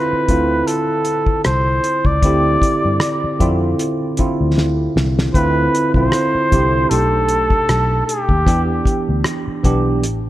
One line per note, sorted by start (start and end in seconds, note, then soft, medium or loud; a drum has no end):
0.00 0.28 D3 medium
0.00 0.29 C4 medium
0.00 0.30 E4 medium
0.00 0.30 F4 medium
0.00 0.69 B4 medium
0.13 muted fingered electric bass stroke soft
0.28 0.61 D2 medium
0.28 1.69 D3 medium
0.28 1.69 C4 medium
0.28 1.70 E4 medium
0.28 1.70 F4 medium
0.28 kick medium
0.28 closed hi-hat medium
0.67 1.44 A4 medium
0.67 closed hi-hat medium
1.05 closed hi-hat medium
1.26 kick medium
1.44 1.78 C2 medium
1.44 2.08 C5 medium
1.44 cross-stick medium
1.44 closed hi-hat medium
1.84 closed hi-hat medium
2.05 2.20 C#2 medium
2.05 3.62 D5 medium
2.05 kick medium
2.22 2.56 D2 medium
2.22 3.29 D3 medium
2.22 3.29 C4 medium
2.22 3.29 E4 medium
2.22 3.30 G4 medium
2.22 kick loud
2.22 closed hi-hat medium
2.62 kick medium
2.62 closed hi-hat medium
2.85 2.98 G2 medium
3.00 cross-stick loud
3.00 closed hi-hat medium
3.24 muted fingered electric bass stroke soft
3.39 3.73 F2 medium
3.39 4.10 D3 medium
3.39 4.10 C4 medium
3.39 4.10 E4 medium
3.39 4.11 F4 medium
3.39 kick medium
3.39 closed hi-hat medium
3.79 closed hi-hat medium
4.17 5.23 D3 medium
4.17 5.24 C4 medium
4.17 5.24 E4 medium
4.17 5.24 F4 medium
4.17 muted fingered electric bass stroke soft
4.17 kick medium
4.17 closed hi-hat soft
4.41 4.87 D2 medium
4.58 snare soft
4.96 5.28 C2 medium
4.96 snare medium
5.19 snare medium
5.34 5.67 D2 medium
5.34 5.88 D3 medium
5.34 5.88 C4 medium
5.34 5.89 E4 medium
5.34 5.89 F4 medium
5.34 5.91 B4 loud
5.34 kick loud
5.34 closed hi-hat medium
5.75 closed hi-hat medium
5.94 6.09 B1 medium
5.94 6.45 D3 medium
5.94 6.46 C4 medium
5.94 6.46 E4 medium
5.94 6.46 F4 medium
5.94 6.91 C5 loud
5.94 kick medium
6.12 cross-stick medium
6.12 closed hi-hat medium
6.35 muted fingered electric bass stroke soft
6.51 6.85 C2 medium
6.51 6.90 D3 medium
6.51 6.90 C4 medium
6.51 6.91 E4 medium
6.51 6.91 G4 medium
6.51 kick medium
6.51 closed hi-hat medium
6.90 7.56 B1 medium
6.90 8.31 B2 medium
6.90 8.31 A3 medium
6.90 8.31 D4 medium
6.90 8.32 D#4 medium
6.90 8.32 G4 medium
6.90 8.06 A4 medium
6.90 closed hi-hat medium
7.29 closed hi-hat medium
7.50 kick medium
7.69 8.01 B1 medium
7.69 cross-stick medium
7.69 closed hi-hat medium
8.06 9.19 G4 medium
8.06 closed hi-hat medium
8.29 8.47 D#2 medium
8.29 kick medium
8.46 8.79 E2 medium
8.46 9.52 E3 medium
8.46 9.52 B3 medium
8.46 9.52 D4 medium
8.46 9.53 G4 medium
8.46 kick loud
8.46 closed hi-hat medium
8.85 kick medium
8.85 closed hi-hat medium
9.09 9.22 D2 medium
9.24 cross-stick loud
9.24 closed hi-hat medium
9.47 muted fingered electric bass stroke soft
9.63 10.03 B1 medium
9.63 10.02 E3 medium
9.63 10.02 B3 medium
9.63 10.03 D4 medium
9.63 10.03 G4 medium
9.63 kick medium
9.63 closed hi-hat medium
10.03 10.30 A1 medium
10.03 closed hi-hat medium